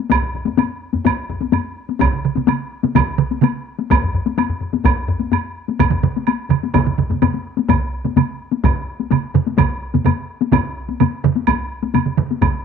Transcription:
0.10 taiko, taiko low-mid, taiko high, high woodblock
0.23 taiko low-mid
0.35 taiko low-mid
0.45 taiko low-mid, taiko high
0.57 taiko low-mid, taiko high, high woodblock
0.93 taiko low-mid, taiko high
1.05 taiko, taiko low-mid, taiko high, high woodblock
1.30 taiko low-mid
1.41 taiko high
1.52 taiko low-mid, taiko high, high woodblock
1.89 taiko high
2.00 taiko, taiko mid, taiko high, high woodblock
2.13 taiko mid
2.25 taiko mid
2.36 taiko mid, taiko high
2.47 taiko mid, taiko high, high woodblock
2.83 taiko mid, taiko high
2.95 taiko, taiko mid, taiko high, high woodblock
3.18 taiko mid
3.31 taiko high
3.42 taiko mid, taiko high, high woodblock
3.79 taiko high
3.90 taiko, taiko low-mid, taiko high, high woodblock
4.02 taiko low-mid
4.14 taiko low-mid
4.26 taiko high
4.38 taiko low-mid, taiko high, high woodblock
4.49 taiko low-mid
4.61 taiko low-mid
4.73 taiko low-mid, taiko high
4.84 taiko, taiko low-mid, taiko high, high woodblock
5.08 taiko low-mid
5.19 taiko high
5.32 taiko low-mid, taiko high, high woodblock
5.68 taiko high
5.79 taiko, taiko low-mid, taiko mid, taiko high, high woodblock
5.91 taiko low-mid, taiko mid
6.03 taiko low-mid, taiko mid
6.16 taiko high
6.27 taiko high, high woodblock
6.50 taiko low-mid, taiko mid, high woodblock
6.63 taiko high
6.74 taiko, taiko low-mid, taiko mid, taiko high, high woodblock
6.87 taiko low-mid, taiko mid
6.99 taiko low-mid, taiko mid
7.10 taiko low-mid, taiko mid, taiko high
7.22 taiko low-mid, taiko mid, taiko high, high woodblock
7.34 taiko high
7.57 taiko high
7.69 taiko, taiko low-mid, taiko mid, taiko high, high woodblock
8.05 taiko low-mid, taiko mid, taiko high
8.16 taiko low-mid, taiko mid, taiko high, high woodblock
8.51 taiko high
8.64 taiko, taiko low-mid, taiko mid, taiko high, high woodblock
9.00 taiko high
9.11 taiko low-mid, taiko mid, taiko high, high woodblock
9.34 taiko low-mid, taiko mid
9.47 taiko high
9.58 taiko, taiko low-mid, taiko mid, taiko high, high woodblock
9.94 taiko low-mid, taiko mid, taiko high
10.06 taiko low-mid, taiko mid, taiko high, high woodblock
10.41 taiko high
10.52 taiko, taiko low-mid, taiko mid, taiko high, high woodblock
10.89 taiko high
11.00 taiko low-mid, taiko mid, taiko high, high woodblock
11.24 taiko low-mid, taiko mid
11.36 taiko high
11.47 taiko, taiko high, high woodblock
11.83 taiko high
11.95 taiko low-mid, taiko mid, taiko high, high woodblock
12.06 taiko low-mid, taiko mid
12.18 taiko low-mid, taiko mid
12.31 taiko high
12.41 taiko, taiko low-mid, taiko mid, taiko high, high woodblock

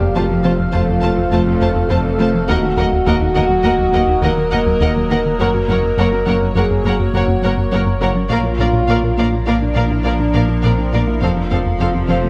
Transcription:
Already playing: F1 A3 C4 G4 A4 D5 F5
0.01 F2
0.15 F1 F2 F3 A3 F4 C5 A5
0.30 F2 F4
0.44 F3 A3 C4 F4 C5 A5
0.59 F2 A3
0.73 F1 F2 F3 A3 F4 C5 A5
0.88 F2 A3
1.02 F2 A3 F4 C5 A5
1.17 F2 F4
1.32 F1 F2 F3 A3 F4 C5 A5
1.46 F2 A3
1.61 F2 A3 F4 C5 A5
1.75 F2 A3
1.89 F1 F2 F3 A3 F4 A4 C5 A5
2.04 F2 A3
2.19 F2 A3 F4 C5 A5
2.34 F3 C4
2.48 D#1 D#2 D#3 F#3 A#3 F#4 A#4 D#5 F#5
2.63 D#2 D#4
2.77 D#2 F#3 A#3 A#4 D#5 F#5
2.92 D#2
3.06 D#2 D#3 A#3 F#4 A#4 D#5 F#5
3.20 D#2 D#4
3.35 D#2 D#3 A#3 A#4 D#5 F#5
3.49 D#2 F#3
3.64 D#2 D#3 A#3 A#4 D#5 F#5
3.78 D#2 F#3
3.92 D#2 F#3 A#3 A#4 D#5 F#5
4.07 D#2 D#4
4.22 D#2 D#3 A#3 A#4 D#5 F#5
4.37 D#2 F#3
4.52 D#2 A#3 A#4 D#5 F#5
4.66 D#2 F#3
4.80 D#2 D#3 A#3 A#4 D#5 F#5
4.96 D#2 F#3
5.10 D#2 A#3 D#4 A#4 D#5 F#5
5.24 D#3 A#3
5.39 F#1 F#2 F#3 A#3 A#4 C#5 F#5
5.54 F#2 F#4
5.68 F#1 F#2 A#3 A#4 C#5 F#5
5.83 F#2
5.97 F#1 F#2 F#3 A#3 A#4 C#5 F#5
6.12 F#2 F#4
6.26 F#1 F#2 F#3 A#3 C#4 A#4 C#5 F#5
6.42 F#2 A#3
6.55 F#1 F#2 F#3 A#3 G#4 A#4 C#5 F#5
6.71 F#2 A#3
6.84 F#1 F#2 A#3 A#4 C#5 F#5
7.00 F#2 F#4
7.14 F#1 F#2 F#3 A#3 F#4 A#4 C#5 F#5
7.28 F#2 A#3
7.42 F#1 F#2 A#3 A#4 C#5 F#5
7.58 F#2 A#3
7.72 F#1 F#2 F#3 A#3 A#4 C#5 F#5
7.87 F#2 A#3
8.01 F#1 F#2 A#3 F#4 A#4 C#5 F#5
8.15 F#3 C#4
8.30 A#1 A#2 F3 A#3 D4 F4 A#4 D5 F5
8.44 A#2 A#4
8.59 A#1 A#2 A#3 D4 A#4 D5 F5
8.73 A#2
8.88 A#1 A#2 A#3 A#4 D5 F5
9.03 A#2 A#4
9.18 A#1 A#2 A#3 F4 A#4 D5 F5
9.32 A#2 D4
9.47 A#1 A#2 A#3 D4 A#4 D5 F5
9.62 A#2 D4
9.67 D4
9.75 A#1 A#2 A#3 D4 A#4 D5 F5
9.87 F4
9.91 A#2 E4 A#4
10.04 A#1 A#2 A#3 D4 A#4 D5 F5
10.19 A#2 D4
10.34 A#1 A#2 A#3 A#4 D5 F5
10.48 A#2 D4
10.62 A#1 A#2 A#3 C4 A#4 D5 F5
10.78 A#2 D4
10.93 A#1 A#2 A#3 D4 A#4 D5 F5
11.07 A#3 E4 F4
11.22 F1 F2 F3 C4 F4 A4 C5 F5
11.37 F2 F4
11.50 F1 F2 A3 C4 A4 C5 F5
11.66 F2
11.79 F1 F2 C3 F3 C4 A4 C5 F5
11.94 F2 F4
12.08 F1 F3 C4 A4 C5 F5
12.23 F2 A3

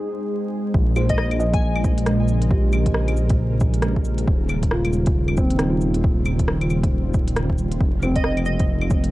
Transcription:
Already playing: G#3 C4 D#4 G#4 C5
0.74 A#1, kick
0.90 C#3
0.96 C5, cabasa, claves
1.05 A#4
1.09 D#5, kick, closed hi-hat
1.14 D#5, cross-stick
1.19 D#5
1.31 closed hi-hat, claves
1.40 D#5, cabasa
1.54 G#5, kick, closed hi-hat
1.76 claves
1.84 kick, cabasa
1.98 closed hi-hat
2.06 cross-stick, closed hi-hat
2.28 cabasa
2.42 closed hi-hat
2.51 G4, kick
2.73 cabasa, claves
2.86 kick, closed hi-hat
2.94 cross-stick
3.08 closed hi-hat, claves
3.17 cabasa
3.29 kick, closed hi-hat
3.60 kick, cabasa
3.74 closed hi-hat
3.82 cross-stick, closed hi-hat
3.96 kick
4.05 cabasa
4.18 closed hi-hat
4.27 D#1 G3, kick
4.41 F4
4.49 cabasa, claves
4.63 kick, closed hi-hat
4.71 F4, cross-stick
4.85 closed hi-hat, claves
4.93 cabasa
5.06 kick, closed hi-hat
5.28 claves
5.37 C4, kick, cabasa
5.50 closed hi-hat
5.56 D#4, cross-stick, closed hi-hat
5.70 F4
5.81 cabasa
5.94 closed hi-hat
6.04 kick
6.26 cabasa, claves
6.39 kick, closed hi-hat
6.48 cross-stick
6.61 closed hi-hat, claves
6.70 cabasa, claves
6.83 kick, closed hi-hat
7.14 kick, cabasa
7.28 closed hi-hat
7.36 cross-stick, closed hi-hat
7.50 kick
7.58 cabasa
7.72 closed hi-hat
7.80 F1 A#3, kick
7.96 D#4
8.03 C4, cabasa, claves
8.15 D#5, kick, closed hi-hat
8.22 C5 D#5, cross-stick
8.37 closed hi-hat, claves
8.46 D#5, cabasa
8.59 kick, closed hi-hat
8.81 claves
8.90 kick, cabasa
9.04 closed hi-hat

